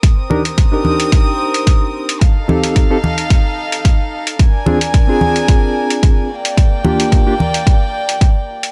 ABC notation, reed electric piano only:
X:1
M:4/4
L:1/16
Q:"Swing 16ths" 1/4=110
K:Cm
V:1 name="Reed electric piano"
z2 [DEGB] z2 [DEGB]8- [DEGB]3 | z2 [CEG=A]3 [CEGA] z8 z2 | z2 [CDFA] z2 [CDFA]8- [CDFA] z2 | z2 [B,DFG]3 [B,DFG] z8 z2 |]